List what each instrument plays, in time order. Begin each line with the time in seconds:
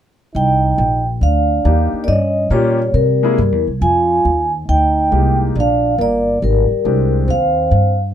0.35 upright bass C2, trombone D#4, vibraphone G5
0.78 upright bass A#1
1.21 upright bass D2, trombone D4, vibraphone F5
1.64 upright bass D#2, grand piano A#3 D4 D#4 G4
1.93 muted upright bass stroke
2.04 trombone A#3, vibraphone D5
2.08 upright bass G2, trombone C#4, vibraphone D#5
2.50 upright bass A#2, trombone G3, grand piano A#3 C#4 F4 G4, vibraphone C#5
2.94 upright bass C3, trombone G3, vibraphone A#4
3.23 grand piano G#3 A#3 E4 G#4
3.38 upright bass G2
3.52 upright bass E2
3.67 upright bass C2
3.81 upright bass F2, trombone F4, vibraphone G#5
4.25 upright bass D#2
4.68 upright bass D2, trombone D#4, vibraphone G5
5.11 upright bass C2, grand piano G#3 A#3 D#4 G4
5.55 upright bass A#1, trombone D4
5.60 vibraphone F5
5.98 upright bass G1, trombone A#3, vibraphone D5
6.42 upright bass G#1, trombone G3, vibraphone A#4
6.71 muted upright bass stroke
6.85 upright bass C2, grand piano G#3 C4 D4 G4
7.27 upright bass D#2, trombone C4, vibraphone F5
7.71 upright bass G2